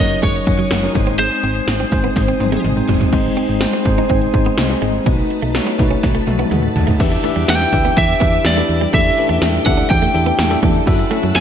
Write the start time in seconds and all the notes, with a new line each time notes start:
Already playing: C#5 F#5 D#6
0.00 F#1 F#3 C#4 D#4 A#4 D#5
0.22 F#1 G#3 C#5, kick, closed hi-hat
0.35 closed hi-hat
0.46 F#1 F#3 C#4 D#4 C#5, muted clean electric guitar stroke, kick, closed hi-hat
0.59 F#3, closed hi-hat
0.71 F#1 A#3, snare, closed hi-hat
0.83 F#3 C#4 D#4 A#4, muted clean electric guitar stroke
0.94 G#1 G#3 C4 D#4 C5 G#5, kick, closed hi-hat
1.07 C4
1.19 G#3 C5, closed hi-hat
1.31 muted clean electric guitar stroke
1.44 G#1 C4, closed hi-hat
1.68 G#1, snare, closed hi-hat
1.80 C4
1.91 G#1 G#3 C4 D#4 C5, muted clean electric guitar stroke, kick, closed hi-hat
2.04 B3
2.16 G#1, kick, snare, closed hi-hat
2.28 C4, closed hi-hat
2.40 G#1 G#3 C4 D#4 C5, muted clean electric guitar stroke, closed hi-hat, high tom
2.52 G#3, closed hi-hat, high tom
2.64 G#1, muted clean electric guitar stroke, closed hi-hat, mid tom
2.76 G#3 C4 D#4 C5
2.88 F#1 F#3, floor tom, open hi-hat
3.01 F#3, floor tom
3.12 G#1 G#3 C4 D#4 C5 G#5, kick, closed hi-hat, crash
3.37 C4, closed hi-hat
3.49 G#1, muted clean electric guitar stroke
3.61 G#3 C4 D#4 C5, snare, closed hi-hat, tambourine
3.73 C4
3.85 G#1 G#3 C4 D#4 C5, muted clean electric guitar stroke, kick, closed hi-hat
3.98 D#4
4.09 G#1 C4, kick, closed hi-hat
4.21 closed hi-hat
4.33 G#1 G#3 C4 D#4 C5, muted clean electric guitar stroke, kick, closed hi-hat
4.45 B3, closed hi-hat
4.58 C2, snare, closed hi-hat, tambourine
4.69 G#3 C4 D#4 D#5
4.82 G#1 G#3, closed hi-hat
5.06 B1 A3 B3 D#4 F#4 B4 A5, kick, closed hi-hat
5.30 muted clean electric guitar stroke, closed hi-hat
5.42 B1 A3
5.54 A3 D#4 F#4 C#5, snare, closed hi-hat, tambourine
5.67 B3
5.78 B1 A3 D#4 F#4 B4, muted clean electric guitar stroke, kick, closed hi-hat
5.91 C#4
6.03 B1, kick, snare, closed hi-hat
6.15 A3, closed hi-hat
6.27 B1 A3 D#4 F#4 A4, muted clean electric guitar stroke, closed hi-hat, high tom
6.39 B3, closed hi-hat, high tom
6.51 D#2 G#3 D#5 F#5, closed hi-hat, mid tom
6.63 muted clean electric guitar stroke
6.76 D#2 F#5 A5, closed hi-hat, floor tom
6.87 A3, floor tom
6.98 E2 E3 B3 D4 E4 G4 B4 E5 D6, kick, closed hi-hat, crash
7.03 E4
7.12 muted clean electric guitar stroke
7.24 A3 D4 E4 G4 B4 E5, closed hi-hat
7.36 E2 G3
7.48 E2 A3 G5, snare, closed hi-hat, tambourine
7.61 muted clean electric guitar stroke
7.72 D2 D4 E4 G4 B4 E5, kick, closed hi-hat
7.85 B3
7.96 E2 E3 B3 E4 E5, kick, closed hi-hat
8.09 closed hi-hat
8.20 E2 B3 D4 E4 G4 B4 E5, kick, closed hi-hat
8.33 closed hi-hat
8.45 E2 E3 B3 E4 D5, snare, closed hi-hat, tambourine
8.56 A3 D4 E4 G4 B4 E5
8.69 E2, muted clean electric guitar stroke, closed hi-hat
8.81 G3
8.92 E2 A2 E3 A3 D4 E4 G4 A4 E5 G5 D6, kick, closed hi-hat
8.97 A3
9.17 C#4 E4 G4 A4 B4, muted clean electric guitar stroke, closed hi-hat
9.23 D4
9.29 E2 A3
9.42 E2, muted clean electric guitar stroke, snare, closed hi-hat, tambourine
9.66 D2 B3 D4 E4 G4 A4 E5 F#5, kick, closed hi-hat
9.77 D4
9.90 E2 A2 E3 A3 G5, kick, closed hi-hat
10.02 A3, closed hi-hat
10.14 E2 D4 E4 G4 A4 E5, muted clean electric guitar stroke, closed hi-hat
10.26 B3, closed hi-hat
10.38 E2 A2 E3 A3, muted clean electric guitar stroke, snare, closed hi-hat, tambourine
10.50 A3 D4 E4 G4 A4 E5
10.63 E2 A3, kick, closed hi-hat
10.86 F#2 C#3 C#4 E4 F#4 A4 E5 F#5 E6, kick, closed hi-hat
10.91 F#3
10.99 muted clean electric guitar stroke
11.11 A3 C#4 E4 F#4 A4 E5, closed hi-hat
11.23 F#2 F#3
11.35 F#2 A3 A5, snare, closed hi-hat, tambourine